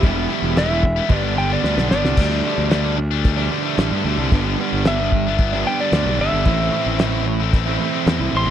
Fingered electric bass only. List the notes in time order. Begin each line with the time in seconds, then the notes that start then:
0.03 E1
0.42 E1
1.10 G1
1.63 D2
1.77 B1
1.90 G1
2.04 C2
2.18 D2
2.58 D2
3.78 A1
3.91 G2
4.04 D2
4.18 C2
4.32 G1
4.72 G1
5.92 D2
6.06 B1
6.19 G1
6.32 G1
6.46 A1
6.86 A1
8.06 E2
8.20 C2
8.33 A1
8.46 F#1